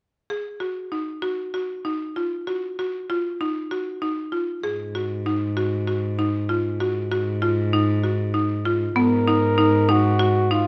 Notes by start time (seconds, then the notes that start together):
0.30 G#4
0.60 F#4
0.92 D#4
1.22 F#4
1.54 F#4
1.85 D#4
2.16 F4
2.47 F#4
2.79 F#4
3.10 F4
3.41 D#4
3.71 F#4
4.02 D#4
4.32 F4
4.63 G#2 G#4
4.95 F#4
5.26 D#4
5.57 F#4
5.87 F#4
6.19 D#4
6.49 F4
6.80 G#2 F#4
7.12 F#4
7.42 F4
7.73 D#4
8.04 F#4
8.34 D#4
8.65 F4
8.96 G#2 B3 A#4
9.28 D#4
9.58 D#4
9.89 D#4 F#4
10.19 F#4
10.51 D#4 F4